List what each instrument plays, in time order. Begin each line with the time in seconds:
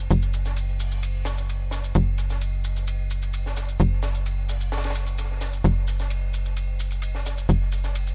0.10 analog synth bass F#1, ride, shaker
0.22 shaker
0.34 ride, shaker
0.45 snare, shaker
0.56 ride, shaker
0.80 open hi-hat, shaker
0.92 shaker
1.03 ride, shaker
1.25 snare, ride, shaker
1.38 shaker
1.49 ride, shaker
1.71 snare, ride, shaker
1.84 shaker
1.95 analog synth bass F#1, ride, shaker
2.18 ride, shaker
2.30 snare, shaker
2.41 ride, shaker
2.64 ride, shaker
2.76 shaker
2.87 ride, shaker
3.11 ride, shaker
3.22 ride, shaker
3.34 ride, shaker
3.46 snare
3.57 snare, ride, shaker
3.69 shaker
3.80 analog synth bass F#1, ride, shaker
4.03 snare, ride, shaker
4.15 shaker
4.26 ride, shaker
4.49 open hi-hat, shaker
4.61 shaker
4.72 snare, ride, shaker
4.78 snare, ride
4.84 snare, ride
4.90 snare, ride
4.95 ride, shaker
5.06 ride, shaker
5.18 ride, shaker
5.41 snare, ride, shaker
5.53 shaker
5.64 analog synth bass F#1, ride, shaker
5.87 ride, shaker
5.99 snare, shaker
6.10 ride, shaker
6.34 ride, shaker
6.46 shaker
6.57 ride, shaker
6.80 ride, shaker
6.91 ride, shaker
7.02 ride, shaker
7.15 snare
7.26 snare, ride, shaker
7.38 shaker
7.49 analog synth bass F#1, ride, shaker
7.72 ride, shaker
7.84 snare, shaker
7.95 ride, shaker
8.07 shaker